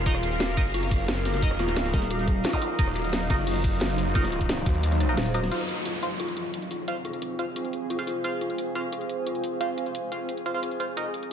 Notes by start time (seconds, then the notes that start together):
Already playing: C4 G#4 A#4 F5
0.06 D#1 D#4 F4 A#4 D#5, kick, closed hi-hat, ride
0.15 cross-stick, ride
0.23 closed hi-hat, ride
0.32 closed hi-hat
0.40 F#4, snare, closed hi-hat, ride
0.49 snare
0.57 F#1 F#3 D#4 A#4 D#5, kick, closed hi-hat, ride
0.65 snare
0.74 F4, closed hi-hat, open hi-hat
0.83 closed hi-hat
0.91 F4, kick, closed hi-hat, ride
1.08 snare, closed hi-hat, ride
1.17 closed hi-hat
1.25 F#4, snare, open hi-hat, ride
1.34 snare, ride
1.42 D#4 A#4 D#5, kick, closed hi-hat, ride
1.51 cross-stick
1.59 F4, snare, closed hi-hat, ride
1.67 snare, closed hi-hat, ride
1.76 D1 F4, snare, closed hi-hat, ride
1.85 snare, ride
1.93 D#1 D#4 A#4 D#5, kick, snare, closed hi-hat, ride
2.02 snare, ride
2.10 F#4, closed hi-hat, ride
2.19 snare, closed hi-hat
2.28 kick, closed hi-hat
2.44 F4, snare, closed hi-hat, ride
2.53 D#4 A#4 D#5, kick, snare, closed hi-hat, zap
2.61 F4, open hi-hat, ride
2.79 D#1 D#4 A#4 C5 D#5, kick, closed hi-hat, ride
2.87 cross-stick, ride
2.95 F#4, closed hi-hat, ride
3.04 closed hi-hat
3.13 snare, closed hi-hat, ride
3.21 snare
3.30 F#1 D#4 F4 A#4 D#5, kick, snare, closed hi-hat, ride
3.39 snare
3.47 F4, closed hi-hat, open hi-hat
3.56 snare, closed hi-hat
3.64 kick, closed hi-hat, ride
3.80 F#4, snare, closed hi-hat, ride
3.90 closed hi-hat
3.98 open hi-hat
4.15 D#4 F4 A#4 D#5, kick, snare, closed hi-hat, ride
4.24 cross-stick, snare, ride
4.32 F4, closed hi-hat, ride
4.41 kick, closed hi-hat, ride
4.49 snare, closed hi-hat, ride
4.66 D#2 F#4, kick, closed hi-hat, ride
4.74 ride
4.83 closed hi-hat, ride
4.92 cross-stick, snare, closed hi-hat
5.00 C#5, closed hi-hat, ride
5.09 D#4 A#4 D#5
5.17 D#1 C5, snare, closed hi-hat, ride
5.26 closed hi-hat
5.34 D#4 F#4 A#4 D#5, cross-stick, open hi-hat, ride
5.43 snare, ride
5.51 C4 F4 C5 F5, closed hi-hat, crash, downlifter
5.69 closed hi-hat
5.77 closed hi-hat
5.86 F4, closed hi-hat
5.94 G#4
6.03 F4 C5 F5, closed hi-hat
6.20 F4, closed hi-hat
6.28 closed hi-hat
6.37 F4, closed hi-hat
6.54 closed hi-hat
6.62 closed hi-hat
6.71 F4, open hi-hat
6.88 F4 C5 F5, closed hi-hat
7.05 F4, closed hi-hat
7.13 closed hi-hat
7.22 F4, closed hi-hat
7.39 F4 C5 F5, closed hi-hat
7.56 F4, closed hi-hat
7.65 closed hi-hat
7.73 closed hi-hat
7.90 F4, closed hi-hat
7.99 F4 C5 F5, closed hi-hat
8.07 F4, open hi-hat
8.24 F4 C5 F5, closed hi-hat
8.41 F4, closed hi-hat
8.50 closed hi-hat
8.58 closed hi-hat
8.75 F4 C5 F5, closed hi-hat
8.92 F4, closed hi-hat
9.01 closed hi-hat
9.10 closed hi-hat
9.27 F4, closed hi-hat
9.35 closed hi-hat
9.44 open hi-hat
9.61 F4 C5 F5, closed hi-hat
9.78 F4, closed hi-hat
9.86 closed hi-hat
9.95 closed hi-hat
10.12 F4 C5 F5, closed hi-hat
10.29 closed hi-hat
10.37 closed hi-hat
10.46 F4 C5 F5, closed hi-hat
10.54 F4 C5 F5
10.63 F4, closed hi-hat
10.71 closed hi-hat
10.80 F4 C5 F5, open hi-hat
10.97 D#4 F4 A#4 D#5, closed hi-hat
11.14 closed hi-hat
11.23 closed hi-hat